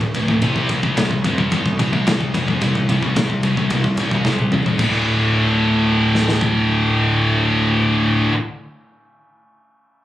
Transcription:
Already playing: D1 D2 A2
0.01 kick
0.14 D1 D2 A2, kick, ride
0.28 D2 A2, kick
0.41 C2 C3 G3 C4, kick, ride
0.56 kick
0.69 C3 G3, kick, ride
0.83 C3 G3, kick
0.97 C2 C3 G3, kick, snare, ride
1.11 kick
1.24 F1 C3 G3, kick, ride
1.38 C3 G3, kick
1.52 G1 C3 G3, kick, ride
1.66 kick
1.79 C2 C3 G3, kick, ride
1.93 C3 G3, kick
2.07 C2 C3 G3, kick, snare, ride
2.21 kick
2.34 F1 C3 G3, kick, ride
2.48 C3 G3, kick
2.61 C2 C3 G3, kick, ride
2.75 kick
2.89 C2 C3 G3, kick, ride
3.03 C3 G3, kick
3.16 C2 C3 G3, kick, snare, ride
3.30 kick
3.43 C2 C3 G3, kick, ride
3.57 C3 G3, kick
3.70 C2 C3 G3, kick, ride
3.84 kick
3.97 C2 C3 G3, kick, ride
4.11 C3 G3, kick
4.25 C2 C3 G3, kick, snare
4.39 high tom
4.52 C2 C3 G3, mid tom
4.66 C3 G3, floor tom
4.79 D1 D2 A2 D3, kick, crash
6.15 snare
6.28 snare
6.41 kick

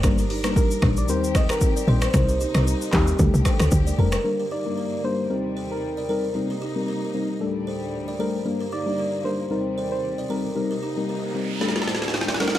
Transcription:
0.03 G1 G3 A#3 D4 A#4, finger snap, kick, cross-stick, shaker
0.18 G4 A#4, shaker
0.30 D#4 G4, open hi-hat
0.44 G3 A#3 D4 A#4, finger snap, cross-stick, shaker
0.56 G4 A#4, kick, shaker
0.71 shaker
0.82 A#1 G3 A#3 D4 A#4, finger snap, kick, cross-stick
0.97 D5, shaker
1.08 D#2 D#3 G3 C4 D#4 G4 A#4 C5, shaker
1.24 shaker
1.35 A4 C5 D#5, finger snap, kick, cross-stick, shaker
1.49 A#4, finger snap, cross-stick, shaker
1.61 kick, shaker
1.76 A#4 D5, shaker
1.88 A#1 G3 C4 D#4 A4 A#4 C5
2.02 finger snap, cross-stick, shaker
2.14 C2 C3 G3 A#3 C4 D#4 A#4, finger snap, kick, cross-stick, shaker
2.29 G4 A#4, shaker
2.41 D#4 G4, shaker
2.55 C2 G3 C4 D#4 A#4, finger snap, cross-stick, shaker
2.67 G4 A#4, shaker
2.81 shaker
2.93 D#2 G3 C4 D#4 G4 A#4, finger snap, kick, cross-stick, clap, shaker
3.07 shaker
3.19 D2 D3 G3 A3 D4 G4 A4, kick, shaker
3.34 C2, shaker
3.45 A4 C5, finger snap, kick, cross-stick, shaker
3.60 D2, finger snap, cross-stick, shaker
3.71 D2, kick, shaker
3.87 A#4 D5, shaker
3.98 F1 G3 A3 D4 A4 A#4 C5
4.12 finger snap, cross-stick, shaker
4.24 G2 D3 G3 A#3 D4 A#4
4.39 G4 A#4
4.51 D#4 G4 D5
4.65 G3 A#3 D4 A#4
4.78 G4 A#4
5.03 G3 A#3 D4 A#4 C5
5.29 D#2 C3 G3 C4 D#4 A#4
5.57 A4 C5
5.72 A#4
5.97 A#4 D5
6.09 G3 C4 D#4 A4 A#4 C5
6.35 G3 A#3 C4 D#4 A#4
6.50 G4 A#4
6.62 D#4 G4
6.76 G3 C4 D#4 A#4
6.88 G4 A#4
7.14 G3 C4 D#4 A#4
7.40 D2 A2 G3 A3 D4 A4
7.67 A4 C5
8.08 A#4 D5
8.19 G3 A3 D4 A4 A#4 C5
8.45 G2 D3 G3 A#3 D4 A#4
8.60 G4 A#4
8.72 D#4 G4 D5
8.86 G3 A#3 D4 A#4
8.99 G4 A#4
9.24 G3 A#3 D4 A#4 C5
9.50 D#2 C3 G3 C4 D#4 A#4
9.78 A4 C5
9.92 C5
10.18 A#4 D5
10.30 G3 C4 D#4 A4 A#4 C5
10.56 G3 A#3 C4 D#4 A#4, noise sweep
10.71 G4 A#4
10.83 D#4 G4
10.97 G3 C4 D#4 A#4
11.09 G4 A#4
11.34 G3 C4 D#4 A#4
11.61 D2 A2 G3 A3 D4 A4, snare
11.69 snare
11.76 snare
11.82 snare
11.88 A4 C5, snare
11.95 snare
12.02 snare
12.08 snare
12.14 snare
12.21 snare
12.28 A#4 D5, snare
12.34 snare
12.40 G3 A3 D4 A4 A#4 C5, snare
12.48 snare
12.55 snare

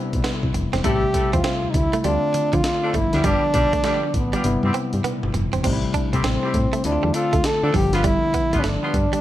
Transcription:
Already playing: C3 G3 B3 D4 E4
0.13 B1, kick, closed hi-hat
0.24 B3, snare, closed hi-hat
0.43 C2, kick
0.54 F1, muted clean electric guitar stroke, closed hi-hat
0.73 E1 C4, snare, closed hi-hat
0.83 A1 C3 G3 A3 C4 E4 G4 A4 E5, kick, closed hi-hat
1.14 A3 C4 E4 G4 A4, muted clean electric guitar stroke, kick, closed hi-hat
1.33 E2 C4 F4, kick, closed hi-hat
1.44 C4, snare, closed hi-hat
1.64 D2
1.71 D2 D#4, muted clean electric guitar stroke, kick, closed hi-hat
1.76 E4
1.93 A3, closed hi-hat
2.00 E4, closed hi-hat
2.04 D2 D3 G3 A3 C4 D4 F4
2.34 D3, muted clean electric guitar stroke, closed hi-hat
2.53 D3 F3 F4, kick, closed hi-hat
2.64 snare, closed hi-hat
2.83 A3 C4 D4 F4 A4
2.94 G1 D3 F3 G3 A3 A#3 E4, kick, closed hi-hat
3.02 B3
3.13 D2 G3 B3 D4 F4 G4, snare, closed hi-hat
3.24 G1 G3 B3 D4 F4 G4, kick, closed hi-hat
3.54 B1 G3 B3 D4 F4 G4, muted clean electric guitar stroke, kick, closed hi-hat
3.73 A3, kick, closed hi-hat
3.84 G3 A3 B3 D4 F4 G4, snare, closed hi-hat
4.03 muted clean electric guitar stroke
4.14 A1 B3, kick, closed hi-hat
4.33 G3 B3 D4 F4 G4, closed hi-hat
4.44 G1 C3 G3 B3 E4, closed hi-hat, high tom
4.63 G2 G3 B3 C4 E4 G4, high tom
4.74 C4, closed hi-hat
4.93 G2, closed hi-hat
5.04 B3, closed hi-hat, mid tom
5.23 G1, mid tom
5.34 F1, muted clean electric guitar stroke, closed hi-hat, floor tom
5.53 E1 C4, closed hi-hat, floor tom
5.64 A1 C3 G3 A3 C4 D#4, kick, closed hi-hat, crash
5.73 E4
5.94 D4, kick, closed hi-hat
6.13 C2 G3 A3 C4 E4 G4, muted clean electric guitar stroke, kick, closed hi-hat
6.24 A1 C4, snare, closed hi-hat
6.43 G3 A3 C4 E4 G4, muted clean electric guitar stroke
6.54 A2, kick, closed hi-hat
6.73 A3, closed hi-hat
6.84 D2 D3 A3 C4 D4 E4, closed hi-hat
6.92 F4
7.03 E2 G3
7.14 A3 C4 D4 F4 A4, muted clean electric guitar stroke, closed hi-hat
7.33 D2 A3, kick, closed hi-hat
7.44 A4, snare, closed hi-hat
7.63 D3 A3 C4 D4 F4 A4
7.74 G1 D3 F3 G3 B3 E4 G4, kick, open hi-hat
7.82 F3
7.93 B3 D4 F4 G4 B4, snare, closed hi-hat
8.04 G3 E4, kick, closed hi-hat
8.34 B3, kick, closed hi-hat
8.53 A1 B3 D4 F4 G4 B4, muted clean electric guitar stroke, kick, closed hi-hat
8.60 A3 C#4, snare, closed hi-hat
8.64 G1 D4
8.83 B3 D4 F4 G4 B4, muted clean electric guitar stroke
8.94 G2, kick, closed hi-hat
9.13 G3, closed hi-hat

